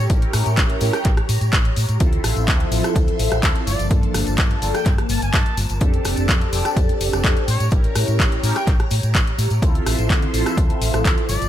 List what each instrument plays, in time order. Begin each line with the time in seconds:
Already playing: string machine G4 C#5 A#5
0.09 fingered electric bass A1, analog polysynth C#4 E4 G4 A#4, kick, closed hi-hat, tambourine
0.22 muted fingered electric bass stroke, closed hi-hat
0.33 fingered electric bass A2, cross-stick, open hi-hat, tambourine
0.46 fingered electric bass A2, closed hi-hat, tambourine
0.57 fingered electric bass A1, kick, clap, closed hi-hat
0.70 closed hi-hat
0.81 fingered electric bass A2, analog polysynth C#4 E4 G4 A#4, open hi-hat, tambourine
0.93 trumpet section G5, cross-stick, closed hi-hat, tambourine
1.05 fingered electric bass A1, kick, clap, closed hi-hat, tambourine
1.17 muted fingered electric bass stroke, cross-stick, closed hi-hat
1.29 fingered electric bass A2, open hi-hat, tambourine
1.41 fingered electric bass A2, closed hi-hat, tambourine
1.53 fingered electric bass A1, kick, clap, closed hi-hat
1.65 closed hi-hat
1.76 fingered electric bass A2, open hi-hat, tambourine
1.89 fingered electric bass A2, closed hi-hat, tambourine
2.00 fingered electric bass D2, string machine F3 E5 C6, analog polysynth C4 E4 F4 A4, kick, closed hi-hat, tambourine
2.13 closed hi-hat
2.24 fingered electric bass A1, cross-stick, open hi-hat, tambourine
2.36 fingered electric bass A1, closed hi-hat, tambourine
2.48 fingered electric bass D2, kick, clap, closed hi-hat
2.60 closed hi-hat
2.71 fingered electric bass A1, analog polysynth C4 E4 F4 A4, open hi-hat, tambourine
2.84 cross-stick, closed hi-hat, tambourine
2.96 fingered electric bass D2, kick, closed hi-hat, tambourine
3.08 muted fingered electric bass stroke, closed hi-hat
3.19 fingered electric bass A1, open hi-hat, tambourine
3.31 fingered electric bass A1, cross-stick, closed hi-hat, tambourine
3.43 fingered electric bass D2, kick, clap, closed hi-hat, tambourine
3.55 closed hi-hat
3.67 fingered electric bass G1, string machine A#3 A5, trumpet section D5, open hi-hat, tambourine
3.79 fingered electric bass G1, closed hi-hat, tambourine
3.90 fingered electric bass G2, analog polysynth A#3 D4 F4 A4, kick, closed hi-hat
4.03 muted fingered electric bass stroke, closed hi-hat
4.14 fingered electric bass G1, cross-stick, open hi-hat, tambourine
4.27 fingered electric bass G1, closed hi-hat, tambourine
4.38 fingered electric bass G2, kick, clap, closed hi-hat
4.51 closed hi-hat
4.62 fingered electric bass G1, analog polysynth A#3 D4 F4 A4, open hi-hat, tambourine
4.74 trumpet section G5, cross-stick, closed hi-hat, tambourine
4.86 fingered electric bass G2, kick, clap, closed hi-hat, tambourine
4.98 muted fingered electric bass stroke, cross-stick, closed hi-hat
5.09 fingered electric bass G1, trumpet section A5, open hi-hat, tambourine
5.22 fingered electric bass G1, trumpet section A5, closed hi-hat, tambourine
5.33 fingered electric bass G2, kick, clap, closed hi-hat, tambourine
5.46 closed hi-hat
5.57 fingered electric bass G1, open hi-hat, tambourine
5.69 fingered electric bass G1, closed hi-hat, tambourine
5.80 fingered electric bass F2, analog polysynth C4 D4 G4 A4, string machine G4 D5, kick, closed hi-hat, tambourine
5.94 closed hi-hat
6.05 fingered electric bass F1, cross-stick, open hi-hat, tambourine
6.17 fingered electric bass F1, closed hi-hat, tambourine
6.28 fingered electric bass F2, kick, clap, closed hi-hat, tambourine
6.41 closed hi-hat
6.52 fingered electric bass F1, analog polysynth C4 D4 G4 A4, open hi-hat, tambourine
6.65 cross-stick, closed hi-hat, tambourine
6.76 fingered electric bass F2, kick, closed hi-hat, tambourine
6.89 muted fingered electric bass stroke, closed hi-hat
7.00 fingered electric bass F1, open hi-hat, tambourine
7.13 fingered electric bass F1, cross-stick, closed hi-hat, tambourine
7.23 fingered electric bass F2, kick, clap, closed hi-hat, tambourine
7.37 closed hi-hat
7.48 fingered electric bass A2, string machine C#5 A#5, trumpet section C#5, open hi-hat, tambourine
7.60 fingered electric bass A2, closed hi-hat, tambourine
7.71 fingered electric bass A1, analog polysynth C#4 E4 G4 A#4, kick, closed hi-hat, tambourine
7.84 muted fingered electric bass stroke, closed hi-hat
7.95 fingered electric bass A2, cross-stick, open hi-hat, tambourine
8.08 fingered electric bass A2, closed hi-hat, tambourine
8.19 fingered electric bass A1, kick, clap, closed hi-hat, tambourine
8.32 closed hi-hat
8.43 fingered electric bass A2, analog polysynth C#4 E4 G4 A#4, open hi-hat, tambourine
8.56 trumpet section G5, cross-stick, closed hi-hat, tambourine
8.67 fingered electric bass A1, kick, clap, closed hi-hat, tambourine
8.80 muted fingered electric bass stroke, cross-stick, closed hi-hat
8.91 fingered electric bass A2, open hi-hat, tambourine
9.03 fingered electric bass A2, closed hi-hat, tambourine
9.15 fingered electric bass A1, kick, clap, closed hi-hat, tambourine
9.27 closed hi-hat
9.38 fingered electric bass A2, open hi-hat, tambourine
9.50 fingered electric bass A2, closed hi-hat, tambourine
9.61 fingered electric bass D2, string machine F3 E5 C6, analog polysynth C4 E4 F4 A4, kick, closed hi-hat, tambourine
9.75 closed hi-hat
9.86 fingered electric bass A1, cross-stick, open hi-hat, tambourine
9.98 fingered electric bass A1, closed hi-hat, tambourine
10.10 fingered electric bass D2, kick, clap, closed hi-hat
10.22 closed hi-hat
10.33 fingered electric bass A1, analog polysynth C4 E4 F4 A4, open hi-hat, tambourine
10.46 cross-stick, closed hi-hat, tambourine
10.57 fingered electric bass D2, kick, closed hi-hat
10.70 muted fingered electric bass stroke, closed hi-hat
10.81 fingered electric bass A1, open hi-hat, tambourine
10.93 fingered electric bass A1, cross-stick, closed hi-hat, tambourine
11.05 fingered electric bass D2, kick, clap, closed hi-hat, tambourine
11.18 closed hi-hat
11.29 fingered electric bass G1, string machine A#3 A5, trumpet section D5, open hi-hat, tambourine
11.42 fingered electric bass G1, closed hi-hat, tambourine